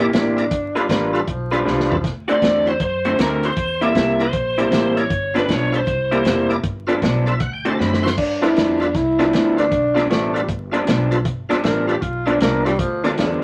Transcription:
Already playing: A#1
0.00 C3 A#3 E4 G4
0.12 A1 C3 A#3 D4 E4 G4, snare, closed hi-hat
0.37 E4 A#4 D5, closed hi-hat
0.51 G1, kick, closed hi-hat
0.75 G3 D4 F4 A4 B4, closed hi-hat
0.89 A1 G3 A#3 D4 F4 B4, kick, snare, closed hi-hat
1.13 G3 F4 A4 B4, closed hi-hat
1.27 B1 F3, kick, closed hi-hat
1.51 F3 G3 D4 F4 A4 B4, closed hi-hat
1.65 C2 G3 D4 F4 B4, snare
1.80 snare
1.89 F4 A4 B4, floor tom
2.04 D2, kick, snare, closed hi-hat
2.28 D3 A3 C4 E4 F#4 C5 D5, closed hi-hat
2.41 E2 D3 A3 C4 F#4, kick, snare, closed hi-hat
2.66 E4 F#4 C5, closed hi-hat
2.80 F#2 C5, kick, closed hi-hat
3.05 D3 A3 C4 E4 F#4 C5, closed hi-hat
3.19 D2 D3 A3 C4 F#4 A#4, snare, closed hi-hat
3.43 E4 F#4 C5, closed hi-hat
3.57 E2, kick, closed hi-hat
3.81 C3 G3 A#3 E4 A#4 D5 E5, closed hi-hat
3.95 C2 C3 G3 A#3 E4, kick, snare, closed hi-hat
4.20 E4 A#4 C5 D5, closed hi-hat
4.33 A#1, kick, closed hi-hat
4.58 C3 G3 A#3 E4 A#4 D5, closed hi-hat
4.71 A1 C3 G3 A#3 E4, snare, closed hi-hat
4.96 E4 A#4 C#5 D5, closed hi-hat
5.10 G1, kick, closed hi-hat
5.34 G2 F3 B3 D4 F4 A4 B4, snare, closed hi-hat
5.48 B1 G2 F3 B3 D4 C#5, kick, snare, closed hi-hat
5.72 F4 A4 B4 C5, closed hi-hat
5.87 C2, kick, closed hi-hat
6.11 C3 G3 A#3 E4 A#4 D5, closed hi-hat
6.25 F1 C3 G3 A#3 E4, snare, closed hi-hat
6.49 E4 A#4 D5, closed hi-hat
6.63 G1, kick, closed hi-hat
6.87 G2 F3 B3 D4 F4 A4 B4, closed hi-hat
7.02 B1 G2 F3 B3 D4, kick, snare, closed hi-hat
7.26 F4 A4 B4 D5 E5, closed hi-hat
7.40 D2 F#5, kick, closed hi-hat
7.53 G5
7.65 D3 A3 C4 E4 F#4 C5 A5, closed hi-hat
7.79 F#2 D3 A3 C4 F#4 B5, snare
7.94 snare
8.03 E4 F#4 C5 C6
8.07 snare
8.17 G2 D4, kick, crash
8.41 G2 F3 B3 D4 E4 F4 A4 B4, snare, closed hi-hat
8.56 F2 G2 F3 B3 D4, snare, closed hi-hat
8.80 D4 F4 A4 B4, closed hi-hat
8.95 C2 E4, kick, snare, closed hi-hat
9.18 G2 F3 B3 D4 F4 A4 B4, snare, closed hi-hat
9.33 D2 G2 F3 B3 D4, snare, closed hi-hat
9.57 D4 F4 A4 B4, snare, closed hi-hat
9.71 B1, kick, closed hi-hat
9.94 G2 F3 B3 D4 F4 A4 B4, closed hi-hat
9.99 snare
10.09 A1 G2 F3 A3 B3 D4, snare, closed hi-hat
10.34 G3 F4 A4 B4, closed hi-hat
10.48 G1, kick, closed hi-hat
10.72 G2 F3 B3 D4 F4 A4 B4, closed hi-hat
10.86 B1 G2 F3 B3 D4, snare, closed hi-hat
11.11 F4 A4 B4, closed hi-hat
11.25 G1, kick, closed hi-hat
11.49 G2 F3 B3 D4 F4 A4 B4, snare, closed hi-hat
11.63 A1 G2 F3 B3 D4 A#4, snare, closed hi-hat
11.87 F4 G4 A4 B4, closed hi-hat
12.01 B1 F4, kick, closed hi-hat
12.26 G2 F3 B3 D4 F4 A4 B4, closed hi-hat
12.40 C2 G2 F3 A#3 B3 D4, snare, closed hi-hat
12.65 G3 F4 A4 B4, snare, closed hi-hat
12.79 D2 F3, kick, closed hi-hat
13.03 G2 D3 F3 B3 D4 F4 A4 D5, snare, closed hi-hat
13.17 E2 G2 D3 F3 B3 D4, snare, closed hi-hat

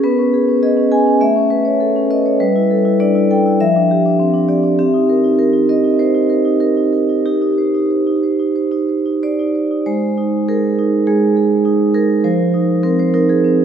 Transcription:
0.04 B3 B4
0.19 C#4
0.33 G#4
0.48 C#4
0.63 G#4 D#5
0.77 C#4
0.92 G#4 G#5
1.06 C#4
1.21 A3 E5
1.36 C#4
1.50 B4
1.65 C#5
1.80 A4
1.96 C#4
2.10 B4 D#5
2.26 C#5
2.40 G3 B4
2.56 E4
2.71 A4
2.85 E4
3.00 D4 D5
3.15 E4
3.31 A4 G5
3.46 E4
3.60 F3 E5
3.76 D4
3.91 G4
4.06 D4
4.20 C4
4.34 D4
4.49 G4 D5
4.63 D4
4.79 C4 G4
4.94 D#4
5.09 A#4
5.24 D#4
5.39 A#4
5.53 D#4
5.69 A#4 D#5
5.84 D#4
5.99 A#4 C5
6.14 D#4
6.30 A#4
6.45 D#4
6.60 A#4
6.77 D#4
6.93 A#4
7.09 D#4
7.26 D#4 G4
7.42 D#4
7.58 C5
7.75 D#4
7.91 C5
8.07 D#4
8.23 C5
8.39 D#4
8.56 C5
8.72 D#4
8.89 C5
9.06 D#4
9.23 C5 D5
9.39 D#4
9.55 C5
9.71 D#4
9.86 G#3 C5
10.18 D#4
10.48 G#4 A#4
10.79 D#4
11.07 G#3 G#4
11.37 G#4
11.65 D#4
11.94 G#4 A#4
12.24 F3 C5
12.54 D#4
12.83 C4 A#4
12.99 C5
13.14 D#4 A#4
13.29 G#4
13.44 C4

